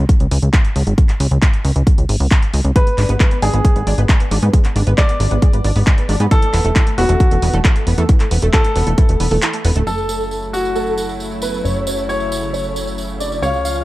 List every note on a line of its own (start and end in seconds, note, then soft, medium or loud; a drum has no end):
0.09 kick loud
0.09 closed hi-hat medium
0.20 0.27 C#2 medium
0.20 closed hi-hat soft
0.31 0.38 C#2 medium
0.31 open hi-hat loud
0.42 0.49 C#2 medium
0.42 closed hi-hat soft
0.53 kick loud
0.53 clap loud
0.53 closed hi-hat medium
0.65 closed hi-hat soft
0.76 0.83 C#2 medium
0.76 open hi-hat loud
0.87 0.94 G#1 medium
0.87 closed hi-hat soft
0.98 kick loud
0.98 closed hi-hat medium
1.09 clap soft
1.09 closed hi-hat soft
1.20 1.27 C#2 medium
1.20 open hi-hat loud
1.31 1.38 C#2 medium
1.31 closed hi-hat soft
1.42 kick loud
1.42 clap loud
1.42 closed hi-hat medium
1.54 closed hi-hat soft
1.65 1.72 C#2 medium
1.65 open hi-hat loud
1.76 1.83 C#2 medium
1.76 closed hi-hat soft
1.87 kick loud
1.87 closed hi-hat medium
1.98 2.05 C#2 medium
1.98 closed hi-hat soft
2.09 2.16 G#1 medium
2.09 open hi-hat loud
2.20 2.27 C#2 medium
2.20 open hi-hat medium
2.31 kick loud
2.31 clap loud
2.31 closed hi-hat medium
2.42 closed hi-hat soft
2.54 2.61 C#2 medium
2.54 open hi-hat loud
2.65 2.72 C#2 medium
2.65 closed hi-hat soft
2.76 2.86 G#3 medium
2.76 3.34 B4 medium
2.76 kick loud
2.76 closed hi-hat medium
2.87 2.97 B3 medium
2.87 closed hi-hat soft
2.98 3.05 G#1 medium
2.98 3.05 D4 loud
2.98 clap soft
2.98 open hi-hat loud
3.09 3.16 G#1 medium
3.09 3.16 B3 loud
3.09 closed hi-hat soft
3.20 3.25 G#3 medium
3.20 kick loud
3.20 clap loud
3.20 closed hi-hat medium
3.31 3.39 B3 medium
3.31 closed hi-hat soft
3.42 3.49 G#1 medium
3.42 3.53 D4 loud
3.42 4.00 G#4 medium
3.42 open hi-hat loud
3.54 3.60 G#1 medium
3.54 3.61 B3 medium
3.54 closed hi-hat soft
3.65 3.75 G#3 medium
3.65 kick loud
3.65 closed hi-hat medium
3.76 3.83 G#1 medium
3.76 3.86 B3 medium
3.76 closed hi-hat soft
3.87 3.94 G#1 medium
3.87 3.94 D4 loud
3.87 open hi-hat loud
3.98 4.05 G#1 medium
3.98 4.05 B3 loud
3.98 closed hi-hat soft
4.09 4.13 G#3 medium
4.09 kick loud
4.09 clap loud
4.09 closed hi-hat medium
4.20 4.27 B3 medium
4.20 closed hi-hat soft
4.31 4.38 G#1 medium
4.31 4.42 D4 loud
4.31 open hi-hat medium
4.42 4.49 G#2 medium
4.42 4.50 B3 loud
4.42 closed hi-hat soft
4.53 4.64 G#3 medium
4.53 kick loud
4.53 closed hi-hat medium
4.65 4.75 B3 medium
4.65 clap soft
4.65 closed hi-hat soft
4.76 4.83 G#1 medium
4.76 4.83 D4 medium
4.76 open hi-hat loud
4.87 4.94 G#1 medium
4.87 4.94 B3 loud
4.87 closed hi-hat medium
4.98 5.02 G#3 medium
4.98 6.22 D5 medium
4.98 kick loud
4.98 clap loud
4.98 closed hi-hat medium
5.09 5.16 B3 medium
5.09 closed hi-hat soft
5.20 5.27 G#1 medium
5.20 5.31 D4 loud
5.20 open hi-hat medium
5.31 5.38 G#1 medium
5.31 5.38 B3 medium
5.31 closed hi-hat soft
5.42 5.53 G#3 medium
5.42 kick loud
5.42 closed hi-hat medium
5.53 5.60 G#1 medium
5.53 5.64 B3 medium
5.53 closed hi-hat medium
5.64 5.71 G#1 medium
5.64 5.72 D4 loud
5.64 open hi-hat loud
5.76 5.83 G#1 medium
5.76 5.83 B3 loud
5.76 open hi-hat medium
5.87 5.91 G#3 medium
5.87 kick loud
5.87 clap loud
5.87 closed hi-hat medium
5.98 6.05 B3 medium
5.98 closed hi-hat soft
6.09 6.16 G#1 loud
6.09 6.20 D4 loud
6.09 open hi-hat loud
6.20 6.27 G#2 medium
6.20 6.27 B3 loud
6.20 closed hi-hat medium
6.31 6.42 E3 medium
6.31 6.89 A4 medium
6.31 kick loud
6.31 closed hi-hat medium
6.42 6.53 A3 medium
6.42 closed hi-hat medium
6.53 6.60 E1 medium
6.53 6.61 B3 loud
6.53 clap soft
6.53 open hi-hat loud
6.65 6.72 E1 medium
6.65 6.72 A3 loud
6.65 closed hi-hat medium
6.76 6.80 E3 medium
6.76 kick loud
6.76 clap loud
6.76 closed hi-hat medium
6.87 6.94 A3 medium
6.87 closed hi-hat medium
6.98 7.05 E1 medium
6.98 7.09 B3 loud
6.98 7.56 F#4 medium
6.98 open hi-hat loud
7.09 7.16 E1 medium
7.09 7.16 A3 loud
7.09 closed hi-hat medium
7.20 7.31 E3 medium
7.20 kick loud
7.20 closed hi-hat medium
7.31 7.38 E1 medium
7.31 7.42 A3 medium
7.31 closed hi-hat medium
7.42 7.49 E1 medium
7.42 7.50 B3 loud
7.42 open hi-hat medium
7.53 7.60 E1 medium
7.53 7.61 A3 loud
7.53 closed hi-hat medium
7.65 7.69 E3 medium
7.65 kick loud
7.65 clap loud
7.65 closed hi-hat medium
7.76 7.83 A3 medium
7.76 closed hi-hat medium
7.87 7.94 E1 medium
7.87 7.97 B3 loud
7.87 open hi-hat loud
7.98 8.05 E2 medium
7.98 8.05 A3 loud
7.98 closed hi-hat medium
8.09 8.20 E3 medium
8.09 kick loud
8.09 closed hi-hat loud
8.20 8.31 A3 medium
8.20 clap soft
8.20 closed hi-hat medium
8.31 8.38 E1 medium
8.31 8.38 B3 medium
8.31 open hi-hat loud
8.42 8.49 E1 medium
8.42 8.50 A3 loud
8.42 closed hi-hat medium
8.53 8.58 E3 medium
8.53 9.78 A4 medium
8.53 kick loud
8.53 clap loud
8.53 closed hi-hat medium
8.64 8.72 A3 medium
8.64 closed hi-hat medium
8.76 8.83 E1 medium
8.76 8.86 B3 loud
8.76 open hi-hat loud
8.87 8.94 E1 medium
8.87 8.94 A3 loud
8.87 closed hi-hat medium
8.98 9.08 E3 medium
8.98 kick loud
8.98 closed hi-hat medium
9.09 9.16 E1 medium
9.09 9.20 A3 medium
9.09 closed hi-hat medium
9.20 9.27 E1 medium
9.20 9.27 B3 loud
9.20 open hi-hat loud
9.31 9.38 E1 medium
9.31 9.39 A3 loud
9.31 open hi-hat medium
9.42 9.47 E3 medium
9.42 clap loud
9.42 closed hi-hat loud
9.53 9.61 A3 medium
9.53 closed hi-hat medium
9.65 9.72 E1 medium
9.65 9.75 B3 loud
9.65 open hi-hat medium
9.76 9.83 D1 medium
9.76 9.83 A3 loud
9.76 closed hi-hat medium
9.87 11.62 F#1 medium
9.87 13.84 C#3 medium
9.87 13.39 F#3 medium
9.87 13.39 A3 medium
9.87 13.39 E4 medium
9.87 10.05 A4 medium
9.87 10.45 A4 medium
9.87 10.05 A4 loud
9.87 tambourine soft
9.98 tambourine soft
10.09 10.27 A4 medium
10.09 10.28 A4 medium
10.09 tambourine medium
10.21 tambourine soft
10.31 tambourine soft
10.42 tambourine soft
10.53 11.11 F#4 medium
10.53 tambourine medium
10.65 tambourine soft
10.75 11.03 A4 medium
10.75 tambourine soft
10.87 tambourine soft
10.98 tambourine medium
11.09 tambourine soft
11.20 tambourine soft
11.31 tambourine soft
11.42 11.61 B4 medium
11.42 tambourine medium
11.54 tambourine soft
11.64 13.40 F#1 medium
11.64 11.83 C#5 medium
11.64 11.83 C#5 loud
11.64 tambourine soft
11.76 tambourine soft
11.87 12.05 C#5 medium
11.87 tambourine medium
11.97 tambourine soft
12.09 13.34 C#5 medium
12.09 tambourine soft
12.20 tambourine soft
12.32 tambourine medium
12.43 tambourine soft
12.53 12.81 C#5 medium
12.53 tambourine soft
12.64 tambourine soft
12.76 tambourine medium
12.87 tambourine soft
12.98 tambourine medium
13.09 tambourine soft
13.20 13.39 D5 medium
13.20 tambourine medium
13.32 tambourine soft
13.42 13.84 C#2 medium
13.42 13.84 F3 medium
13.42 13.84 G#3 medium
13.42 13.84 F4 medium
13.42 13.84 C#5 medium
13.42 13.61 F5 medium
13.42 13.61 F5 loud
13.42 tambourine soft
13.53 tambourine soft
13.64 13.83 F5 medium
13.64 tambourine medium
13.76 tambourine soft